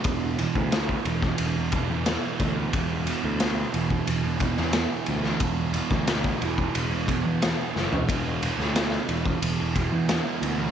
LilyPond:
<<
  \new Staff \with { instrumentName = "Distorted electric guitar" } { \clef bass \time 4/4 \key c \lydian \tempo 4 = 90 <e, b, e>8 <e, b, e>16 <b, e>16 <e, b, e>8 <e, b, e>8. <b, e>16 <e, b, e>16 <b, e>16 <e, b, e>16 <b, e>16 <e, b, e>16 <b, e>16 | <e, b, e>8 <e, b, e>16 <b, e>16 <e, b, e>8 <e, b, e>8. <b, e>16 <e, b, e>16 <b, e>16 <e, b, e>16 <b, e>16 <e, b, e>16 <b, e>16 | <e, b, e>8 <e, b, e>16 <b, e>16 <e, b, e>8 <e, b, e>8. <b, e>16 <e, b, e>16 <b, e>16 <e, b, e>16 <b, e>16 <e, b, e>16 <b, e>16 | <e, b, e>8 <e, b, e>16 <b, e>16 <e, b, e>8 <e, b, e>8. <b, e>16 <e, b, e>16 <b, e>16 <e, b, e>16 <b, e>16 <e, b, e>16 <b, e>16 | }
  \new Staff \with { instrumentName = "Picked electric bass" } { \clef bass \time 4/4 \key c \lydian e,,8. d,8. e,,8 e,,8. e,8 r16 d,8 | e,,8. d,8. e,,8 e,,8. e,8 r16 d,8 | e,,8. d,8. e,,8 e,,8. e,8 r16 fis,,16 e,,16 | e,,8. d,8. e,,8 e,,8. e,8 r16 d,8 | }
  \new DrumStaff \with { instrumentName = "Drums" } \drummode { \time 4/4 <bd cymr>8 cymr16 bd16 <cymr sn>16 bd16 cymr16 <bd sn>16 cymr8 <bd cymr>8 <cymr sn>8 <bd cymr>8 | <bd cymr>8 cymr8 <cymr sn>8 cymr16 bd16 cymr8 <bd cymr>16 sn16 <cymr sn>8 cymr16 sn16 | <bd cymr>8 cymr16 <bd sn>16 <cymr sn>16 bd16 cymr16 bd16 cymr8 <bd cymr>8 <cymr sn>8 sn16 tomfh16 | <bd cymr>8 cymr16 sn16 <cymr sn>8 cymr16 bd16 cymr8 <bd cymr>8 <cymr sn>8 cymr8 | }
>>